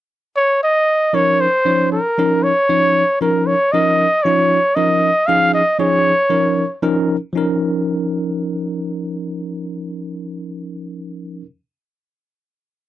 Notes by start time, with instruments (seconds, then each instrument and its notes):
0.36 trumpet C#5
0.63 trumpet D#5
1.13 tine electric piano F3 C#4 D#4 A#4, trumpet C#5
1.41 trumpet C5
1.65 tine electric piano F3 C#4 D#4 C#5
1.92 trumpet A#4
2.18 tine electric piano F3 C#4 D#4 A#4
2.43 trumpet C#5
2.69 tine electric piano F3 C#4 D#4 C#5
3.21 tine electric piano F3 C#4 D#4 A#4, trumpet A#4
3.46 trumpet C#5
3.72 tine electric piano F3 C#4 D#4 A#4, trumpet D#5
4.24 tine electric piano F3 C#4 D#4 F4, trumpet C#5
4.75 tine electric piano F3 C#4 D#4 A#4, trumpet D#5
5.26 tine electric piano F3 C#4 D#4 G#4, trumpet F5
5.53 trumpet D#5
5.79 tine electric piano F3 C#4 D#4 G#4, trumpet C#5
6.30 tine electric piano F3 C#4 D#4 A#4
6.83 tine electric piano F3 C#4 D#4 A#4
7.33 tine electric piano F3 C#4 D#4
7.37 tine electric piano A#4